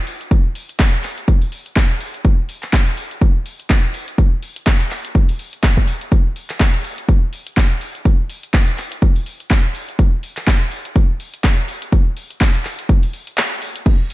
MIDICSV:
0, 0, Header, 1, 2, 480
1, 0, Start_track
1, 0, Tempo, 483871
1, 310, Time_signature, 4, 2, 24, 8
1, 14023, End_track
2, 0, Start_track
2, 0, Title_t, "Drums"
2, 69, Note_on_c, 9, 46, 105
2, 168, Note_off_c, 9, 46, 0
2, 206, Note_on_c, 9, 42, 60
2, 305, Note_off_c, 9, 42, 0
2, 309, Note_on_c, 9, 36, 116
2, 309, Note_on_c, 9, 42, 52
2, 408, Note_off_c, 9, 36, 0
2, 408, Note_off_c, 9, 42, 0
2, 549, Note_on_c, 9, 46, 108
2, 648, Note_off_c, 9, 46, 0
2, 686, Note_on_c, 9, 42, 65
2, 785, Note_off_c, 9, 42, 0
2, 789, Note_on_c, 9, 36, 122
2, 789, Note_on_c, 9, 39, 121
2, 789, Note_on_c, 9, 42, 53
2, 888, Note_off_c, 9, 36, 0
2, 888, Note_off_c, 9, 39, 0
2, 889, Note_off_c, 9, 42, 0
2, 926, Note_on_c, 9, 46, 62
2, 1025, Note_off_c, 9, 46, 0
2, 1028, Note_on_c, 9, 39, 37
2, 1029, Note_on_c, 9, 46, 100
2, 1127, Note_off_c, 9, 39, 0
2, 1128, Note_off_c, 9, 46, 0
2, 1166, Note_on_c, 9, 42, 63
2, 1265, Note_off_c, 9, 42, 0
2, 1269, Note_on_c, 9, 36, 112
2, 1269, Note_on_c, 9, 42, 51
2, 1368, Note_off_c, 9, 36, 0
2, 1368, Note_off_c, 9, 42, 0
2, 1406, Note_on_c, 9, 46, 57
2, 1505, Note_off_c, 9, 46, 0
2, 1509, Note_on_c, 9, 46, 98
2, 1608, Note_off_c, 9, 46, 0
2, 1646, Note_on_c, 9, 42, 64
2, 1745, Note_off_c, 9, 42, 0
2, 1748, Note_on_c, 9, 39, 118
2, 1749, Note_on_c, 9, 36, 117
2, 1749, Note_on_c, 9, 42, 50
2, 1847, Note_off_c, 9, 39, 0
2, 1848, Note_off_c, 9, 36, 0
2, 1848, Note_off_c, 9, 42, 0
2, 1988, Note_on_c, 9, 46, 112
2, 2088, Note_off_c, 9, 46, 0
2, 2125, Note_on_c, 9, 42, 59
2, 2224, Note_off_c, 9, 42, 0
2, 2229, Note_on_c, 9, 36, 114
2, 2229, Note_on_c, 9, 42, 51
2, 2328, Note_off_c, 9, 36, 0
2, 2328, Note_off_c, 9, 42, 0
2, 2469, Note_on_c, 9, 46, 102
2, 2568, Note_off_c, 9, 46, 0
2, 2605, Note_on_c, 9, 39, 38
2, 2606, Note_on_c, 9, 42, 64
2, 2704, Note_off_c, 9, 39, 0
2, 2705, Note_off_c, 9, 42, 0
2, 2708, Note_on_c, 9, 39, 120
2, 2709, Note_on_c, 9, 36, 119
2, 2709, Note_on_c, 9, 42, 48
2, 2808, Note_off_c, 9, 36, 0
2, 2808, Note_off_c, 9, 39, 0
2, 2808, Note_off_c, 9, 42, 0
2, 2846, Note_on_c, 9, 46, 61
2, 2945, Note_off_c, 9, 46, 0
2, 2949, Note_on_c, 9, 46, 110
2, 3049, Note_off_c, 9, 46, 0
2, 3086, Note_on_c, 9, 42, 59
2, 3185, Note_off_c, 9, 42, 0
2, 3189, Note_on_c, 9, 36, 116
2, 3189, Note_on_c, 9, 42, 50
2, 3288, Note_off_c, 9, 36, 0
2, 3289, Note_off_c, 9, 42, 0
2, 3429, Note_on_c, 9, 46, 106
2, 3529, Note_off_c, 9, 46, 0
2, 3566, Note_on_c, 9, 42, 60
2, 3666, Note_off_c, 9, 42, 0
2, 3669, Note_on_c, 9, 36, 116
2, 3669, Note_on_c, 9, 39, 116
2, 3670, Note_on_c, 9, 42, 48
2, 3768, Note_off_c, 9, 36, 0
2, 3768, Note_off_c, 9, 39, 0
2, 3769, Note_off_c, 9, 42, 0
2, 3909, Note_on_c, 9, 46, 105
2, 4009, Note_off_c, 9, 46, 0
2, 4047, Note_on_c, 9, 42, 60
2, 4146, Note_off_c, 9, 42, 0
2, 4149, Note_on_c, 9, 36, 115
2, 4150, Note_on_c, 9, 42, 50
2, 4248, Note_off_c, 9, 36, 0
2, 4249, Note_off_c, 9, 42, 0
2, 4390, Note_on_c, 9, 46, 107
2, 4489, Note_off_c, 9, 46, 0
2, 4526, Note_on_c, 9, 42, 63
2, 4626, Note_off_c, 9, 42, 0
2, 4629, Note_on_c, 9, 36, 119
2, 4629, Note_on_c, 9, 39, 115
2, 4630, Note_on_c, 9, 42, 51
2, 4728, Note_off_c, 9, 36, 0
2, 4728, Note_off_c, 9, 39, 0
2, 4729, Note_off_c, 9, 42, 0
2, 4766, Note_on_c, 9, 46, 62
2, 4866, Note_off_c, 9, 46, 0
2, 4869, Note_on_c, 9, 39, 33
2, 4870, Note_on_c, 9, 46, 105
2, 4968, Note_off_c, 9, 39, 0
2, 4969, Note_off_c, 9, 46, 0
2, 5006, Note_on_c, 9, 42, 61
2, 5106, Note_off_c, 9, 42, 0
2, 5109, Note_on_c, 9, 36, 114
2, 5110, Note_on_c, 9, 42, 47
2, 5208, Note_off_c, 9, 36, 0
2, 5209, Note_off_c, 9, 42, 0
2, 5246, Note_on_c, 9, 46, 62
2, 5346, Note_off_c, 9, 46, 0
2, 5349, Note_on_c, 9, 46, 99
2, 5448, Note_off_c, 9, 46, 0
2, 5486, Note_on_c, 9, 42, 60
2, 5585, Note_off_c, 9, 42, 0
2, 5589, Note_on_c, 9, 36, 114
2, 5589, Note_on_c, 9, 39, 109
2, 5589, Note_on_c, 9, 42, 46
2, 5688, Note_off_c, 9, 36, 0
2, 5688, Note_off_c, 9, 39, 0
2, 5689, Note_off_c, 9, 42, 0
2, 5726, Note_on_c, 9, 36, 60
2, 5825, Note_off_c, 9, 36, 0
2, 5829, Note_on_c, 9, 46, 109
2, 5928, Note_off_c, 9, 46, 0
2, 5966, Note_on_c, 9, 42, 59
2, 6065, Note_off_c, 9, 42, 0
2, 6069, Note_on_c, 9, 36, 113
2, 6069, Note_on_c, 9, 42, 50
2, 6168, Note_off_c, 9, 36, 0
2, 6168, Note_off_c, 9, 42, 0
2, 6309, Note_on_c, 9, 46, 100
2, 6408, Note_off_c, 9, 46, 0
2, 6445, Note_on_c, 9, 39, 37
2, 6446, Note_on_c, 9, 42, 61
2, 6545, Note_off_c, 9, 39, 0
2, 6545, Note_off_c, 9, 42, 0
2, 6548, Note_on_c, 9, 39, 111
2, 6549, Note_on_c, 9, 36, 110
2, 6549, Note_on_c, 9, 42, 50
2, 6648, Note_off_c, 9, 36, 0
2, 6648, Note_off_c, 9, 39, 0
2, 6648, Note_off_c, 9, 42, 0
2, 6686, Note_on_c, 9, 46, 57
2, 6785, Note_off_c, 9, 46, 0
2, 6789, Note_on_c, 9, 46, 100
2, 6888, Note_off_c, 9, 46, 0
2, 6926, Note_on_c, 9, 42, 59
2, 7025, Note_off_c, 9, 42, 0
2, 7029, Note_on_c, 9, 36, 115
2, 7029, Note_on_c, 9, 42, 46
2, 7128, Note_off_c, 9, 36, 0
2, 7129, Note_off_c, 9, 42, 0
2, 7269, Note_on_c, 9, 46, 101
2, 7368, Note_off_c, 9, 46, 0
2, 7406, Note_on_c, 9, 42, 62
2, 7505, Note_off_c, 9, 42, 0
2, 7509, Note_on_c, 9, 36, 107
2, 7509, Note_on_c, 9, 39, 106
2, 7510, Note_on_c, 9, 42, 47
2, 7608, Note_off_c, 9, 36, 0
2, 7608, Note_off_c, 9, 39, 0
2, 7609, Note_off_c, 9, 42, 0
2, 7749, Note_on_c, 9, 46, 101
2, 7848, Note_off_c, 9, 46, 0
2, 7886, Note_on_c, 9, 42, 57
2, 7985, Note_off_c, 9, 42, 0
2, 7989, Note_on_c, 9, 36, 109
2, 7989, Note_on_c, 9, 42, 51
2, 8089, Note_off_c, 9, 36, 0
2, 8089, Note_off_c, 9, 42, 0
2, 8229, Note_on_c, 9, 46, 101
2, 8328, Note_off_c, 9, 46, 0
2, 8366, Note_on_c, 9, 42, 63
2, 8466, Note_off_c, 9, 42, 0
2, 8468, Note_on_c, 9, 39, 113
2, 8469, Note_on_c, 9, 36, 115
2, 8469, Note_on_c, 9, 42, 50
2, 8567, Note_off_c, 9, 39, 0
2, 8568, Note_off_c, 9, 42, 0
2, 8569, Note_off_c, 9, 36, 0
2, 8606, Note_on_c, 9, 46, 54
2, 8705, Note_off_c, 9, 46, 0
2, 8709, Note_on_c, 9, 39, 35
2, 8709, Note_on_c, 9, 46, 100
2, 8808, Note_off_c, 9, 39, 0
2, 8809, Note_off_c, 9, 46, 0
2, 8846, Note_on_c, 9, 42, 62
2, 8945, Note_off_c, 9, 42, 0
2, 8950, Note_on_c, 9, 36, 107
2, 8950, Note_on_c, 9, 42, 49
2, 9049, Note_off_c, 9, 36, 0
2, 9049, Note_off_c, 9, 42, 0
2, 9086, Note_on_c, 9, 46, 58
2, 9185, Note_off_c, 9, 46, 0
2, 9189, Note_on_c, 9, 46, 93
2, 9288, Note_off_c, 9, 46, 0
2, 9326, Note_on_c, 9, 42, 62
2, 9425, Note_off_c, 9, 42, 0
2, 9429, Note_on_c, 9, 36, 114
2, 9429, Note_on_c, 9, 39, 107
2, 9429, Note_on_c, 9, 42, 51
2, 9528, Note_off_c, 9, 39, 0
2, 9529, Note_off_c, 9, 36, 0
2, 9529, Note_off_c, 9, 42, 0
2, 9670, Note_on_c, 9, 46, 103
2, 9769, Note_off_c, 9, 46, 0
2, 9806, Note_on_c, 9, 42, 63
2, 9906, Note_off_c, 9, 42, 0
2, 9909, Note_on_c, 9, 36, 106
2, 9910, Note_on_c, 9, 42, 53
2, 10008, Note_off_c, 9, 36, 0
2, 10009, Note_off_c, 9, 42, 0
2, 10149, Note_on_c, 9, 46, 99
2, 10249, Note_off_c, 9, 46, 0
2, 10285, Note_on_c, 9, 39, 36
2, 10286, Note_on_c, 9, 42, 68
2, 10384, Note_off_c, 9, 39, 0
2, 10385, Note_off_c, 9, 42, 0
2, 10388, Note_on_c, 9, 39, 116
2, 10389, Note_on_c, 9, 36, 113
2, 10389, Note_on_c, 9, 42, 54
2, 10488, Note_off_c, 9, 39, 0
2, 10488, Note_off_c, 9, 42, 0
2, 10489, Note_off_c, 9, 36, 0
2, 10526, Note_on_c, 9, 46, 56
2, 10625, Note_off_c, 9, 46, 0
2, 10629, Note_on_c, 9, 46, 95
2, 10728, Note_off_c, 9, 46, 0
2, 10766, Note_on_c, 9, 42, 61
2, 10865, Note_off_c, 9, 42, 0
2, 10869, Note_on_c, 9, 36, 107
2, 10869, Note_on_c, 9, 42, 53
2, 10968, Note_off_c, 9, 42, 0
2, 10969, Note_off_c, 9, 36, 0
2, 11109, Note_on_c, 9, 46, 97
2, 11208, Note_off_c, 9, 46, 0
2, 11246, Note_on_c, 9, 42, 68
2, 11345, Note_off_c, 9, 42, 0
2, 11348, Note_on_c, 9, 39, 106
2, 11349, Note_on_c, 9, 36, 107
2, 11349, Note_on_c, 9, 42, 50
2, 11447, Note_off_c, 9, 39, 0
2, 11448, Note_off_c, 9, 36, 0
2, 11448, Note_off_c, 9, 42, 0
2, 11589, Note_on_c, 9, 46, 100
2, 11688, Note_off_c, 9, 46, 0
2, 11726, Note_on_c, 9, 42, 62
2, 11825, Note_off_c, 9, 42, 0
2, 11829, Note_on_c, 9, 36, 113
2, 11829, Note_on_c, 9, 42, 55
2, 11928, Note_off_c, 9, 42, 0
2, 11929, Note_off_c, 9, 36, 0
2, 12069, Note_on_c, 9, 46, 101
2, 12168, Note_off_c, 9, 46, 0
2, 12206, Note_on_c, 9, 42, 69
2, 12305, Note_off_c, 9, 42, 0
2, 12308, Note_on_c, 9, 39, 117
2, 12309, Note_on_c, 9, 36, 107
2, 12309, Note_on_c, 9, 42, 56
2, 12408, Note_off_c, 9, 36, 0
2, 12408, Note_off_c, 9, 39, 0
2, 12408, Note_off_c, 9, 42, 0
2, 12446, Note_on_c, 9, 46, 53
2, 12545, Note_off_c, 9, 46, 0
2, 12548, Note_on_c, 9, 39, 36
2, 12549, Note_on_c, 9, 46, 99
2, 12648, Note_off_c, 9, 39, 0
2, 12648, Note_off_c, 9, 46, 0
2, 12686, Note_on_c, 9, 42, 65
2, 12785, Note_off_c, 9, 42, 0
2, 12789, Note_on_c, 9, 36, 106
2, 12789, Note_on_c, 9, 42, 53
2, 12888, Note_off_c, 9, 36, 0
2, 12888, Note_off_c, 9, 42, 0
2, 12926, Note_on_c, 9, 46, 56
2, 13025, Note_off_c, 9, 46, 0
2, 13029, Note_on_c, 9, 46, 96
2, 13128, Note_off_c, 9, 46, 0
2, 13166, Note_on_c, 9, 42, 67
2, 13265, Note_off_c, 9, 42, 0
2, 13268, Note_on_c, 9, 39, 111
2, 13269, Note_on_c, 9, 42, 55
2, 13368, Note_off_c, 9, 39, 0
2, 13368, Note_off_c, 9, 42, 0
2, 13509, Note_on_c, 9, 46, 106
2, 13608, Note_off_c, 9, 46, 0
2, 13646, Note_on_c, 9, 42, 66
2, 13745, Note_off_c, 9, 42, 0
2, 13749, Note_on_c, 9, 36, 114
2, 13749, Note_on_c, 9, 42, 55
2, 13749, Note_on_c, 9, 49, 75
2, 13848, Note_off_c, 9, 36, 0
2, 13848, Note_off_c, 9, 42, 0
2, 13848, Note_off_c, 9, 49, 0
2, 13989, Note_on_c, 9, 46, 106
2, 14023, Note_off_c, 9, 46, 0
2, 14023, End_track
0, 0, End_of_file